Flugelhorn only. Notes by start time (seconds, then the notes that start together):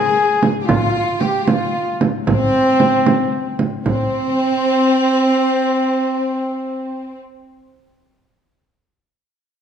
Already playing: G#4
0.68 F4
0.76 F4
0.83 F4
0.92 F4
0.98 F4
1.06 F4
1.23 G4
1.43 G4
1.49 F4
2.29 C4
3.84 C4